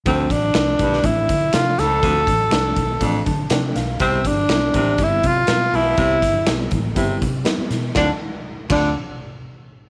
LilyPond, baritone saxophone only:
\new Staff \with { instrumentName = "Baritone saxophone" } { \clef bass \time 4/4 \key d \dorian \tempo 4 = 121 d,8 r4 g,8 r4. f,8 | d,8 r4. f,8 r4. | c8 r4 c8 r4. b,8 | c8 r4. c8 r4. |
d8 r4 d8 r2 | }